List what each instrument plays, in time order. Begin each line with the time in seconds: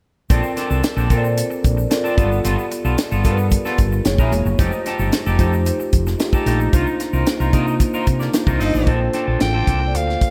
0.30 fretless electric bass A#1, tine electric piano C4 F4 A4 A#4 D5, clean electric guitar C4 D4 A4, kick, closed hi-hat, shaker
0.43 muted clean electric guitar stroke, shaker
0.57 clean electric guitar C4 D4 A4, snare, closed hi-hat, shaker
0.70 fretless electric bass C2, clean electric guitar C4 D4 A4, shaker
0.83 muted clean electric guitar stroke, snare, closed hi-hat, shaker
0.97 fretless electric bass A#1, clean electric guitar C4 D4 A4, shaker
1.10 fretless electric bass A#2, clean electric guitar C4 D4 A4, tine electric piano C4 F4 A4 A#4 C5, kick, closed hi-hat, shaker
1.18 tine electric piano D5
1.24 muted clean electric guitar stroke, shaker
1.37 muted clean electric guitar stroke, closed hi-hat, shaker
1.50 muted clean electric guitar stroke, shaker
1.64 fretless electric bass A#1, kick, closed hi-hat, shaker
1.77 muted clean electric guitar stroke, shaker
1.90 tine electric piano C4 F4 A4 A#4 D5, muted clean electric guitar stroke, snare, closed hi-hat, shaker
2.04 clean electric guitar C4 D4 A4, shaker
2.17 fretless electric bass G1, tine electric piano B3 F4 G4 A4 D5, clean electric guitar B3 F4 A4, kick, closed hi-hat, shaker
2.31 muted clean electric guitar stroke, shaker
2.44 fretless electric bass G1, clean electric guitar B3 F4 A4, closed hi-hat, shaker
2.58 muted clean electric guitar stroke, shaker
2.71 muted clean electric guitar stroke, closed hi-hat, shaker
2.85 fretless electric bass B1, clean electric guitar B3 F4 A4, shaker
2.98 muted clean electric guitar stroke, snare, closed hi-hat, shaker
3.11 fretless electric bass G1, clean electric guitar B3 F4 A4, shaker
3.24 fretless electric bass G2, tine electric piano B3 F4 G4 A4 A#4, clean electric guitar B3 F4 A4, kick, closed hi-hat, shaker
3.31 tine electric piano B4
3.38 muted clean electric guitar stroke, shaker
3.50 muted clean electric guitar stroke, kick, closed hi-hat, shaker
3.65 clean electric guitar B3 F4 A4, snare, shaker
3.78 fretless electric bass G1, muted clean electric guitar stroke, kick, closed hi-hat, shaker
3.92 muted clean electric guitar stroke, shaker
4.04 fretless electric bass F#1, tine electric piano A#3 E4 F#4 G#4 C#5, muted clean electric guitar stroke, snare, closed hi-hat, shaker
4.18 fretless electric bass A#1, clean electric guitar E4 G#4 A#4, kick, shaker
4.31 fretless electric bass E1, tine electric piano A#3 E4 F#4 G#4 C#5, muted clean electric guitar stroke, closed hi-hat, shaker
4.45 fretless electric bass F#1, muted clean electric guitar stroke, shaker
4.58 fretless electric bass F1, tine electric piano G#3 D#4 F4 G4 C5, clean electric guitar D#4 G4 A4, kick, closed hi-hat, shaker
4.64 tine electric piano A3
4.72 muted clean electric guitar stroke, shaker
4.86 clean electric guitar D#4 G4 A4, snare, closed hi-hat, shaker
4.99 fretless electric bass G1, clean electric guitar D#4 G4 A4, shaker
5.12 muted clean electric guitar stroke, snare, closed hi-hat, shaker
5.26 fretless electric bass F1, clean electric guitar D#4 G4 A4, shaker
5.39 fretless electric bass F2, tine electric piano A3 D#4 F4 G4 C5, clean electric guitar D#4 G4 A4, kick, closed hi-hat, shaker
5.53 muted clean electric guitar stroke, shaker
5.66 muted clean electric guitar stroke, closed hi-hat, shaker
5.80 muted clean electric guitar stroke, shaker
5.93 fretless electric bass F1, kick, closed hi-hat, shaker
6.06 muted clean electric guitar stroke, snare, shaker
6.19 tine electric piano A3 D#4 F4 G4 D#5, muted clean electric guitar stroke, snare, closed hi-hat, shaker
6.33 clean electric guitar D#4 G4 A4, kick, shaker
6.46 fretless electric bass A#1, tine electric piano A3 D#4 F4 G4 A4, clean electric guitar D#4 G4 A4, closed hi-hat, shaker
6.60 muted clean electric guitar stroke, shaker
6.73 fretless electric bass C2, tine electric piano A#3 D4 D#4 F4 C5, clean electric guitar D#4 F4 A#4, kick, closed hi-hat, shaker
6.87 muted clean electric guitar stroke, shaker
7.00 muted clean electric guitar stroke, snare, closed hi-hat, shaker
7.13 fretless electric bass C2, clean electric guitar D#4 F4 A#4, shaker
7.26 muted clean electric guitar stroke, snare, closed hi-hat, shaker
7.40 fretless electric bass C2, clean electric guitar D#4 F4 A#4, shaker
7.52 fretless electric bass C3, tine electric piano A#3 D4 D#4 F4 C5, clean electric guitar D#4 F4 A#4, kick, closed hi-hat, shaker
7.67 muted clean electric guitar stroke, shaker
7.80 muted clean electric guitar stroke, kick, closed hi-hat, shaker
7.94 clean electric guitar D#4 F4 A#4, shaker
8.07 fretless electric bass C3, muted clean electric guitar stroke, kick, closed hi-hat, shaker
8.20 horn section A#3 D4 G4 D5, muted clean electric guitar stroke, snare, shaker
8.33 tine electric piano A#3 D4 D#4 F4 C5, muted clean electric guitar stroke, snare, closed hi-hat, shaker
8.47 fretless electric bass C2, clean electric guitar D#4 F4 A#4, kick, shaker
8.59 fretless electric bass G1, tine electric piano A#3 D4 D#4 F4 D#5, horn section C4 D#4 A4 D#5, muted clean electric guitar stroke, open hi-hat, shaker
8.74 fretless electric bass A1, muted clean electric guitar stroke, shaker
8.86 fretless electric bass A#1, tine electric piano A#3 C#4 F4 A4 C5, clean electric guitar C4 D4 A4, kick, closed hi-hat
8.92 tine electric piano D4
9.01 muted clean electric guitar stroke
9.13 clean electric guitar C4 D4 A4, snare, closed hi-hat
9.27 fretless electric bass A#1, clean electric guitar C4 D4 A4
9.40 fretless electric bass A1, tine electric piano A#3 D4 F4 A4 C5, soprano saxophone G5, muted clean electric guitar stroke, snare, closed hi-hat
9.54 clean electric guitar C4 D4 A4
9.67 fretless electric bass C2, clean electric guitar C4 D4 A4, kick, closed hi-hat
9.80 tine electric piano A#3 D4 F4 A4 C5, muted clean electric guitar stroke
9.87 tine electric piano D5
9.94 fretless electric bass D2, soprano saxophone F5, muted clean electric guitar stroke, closed hi-hat
10.07 muted clean electric guitar stroke, snare
10.21 kick, closed hi-hat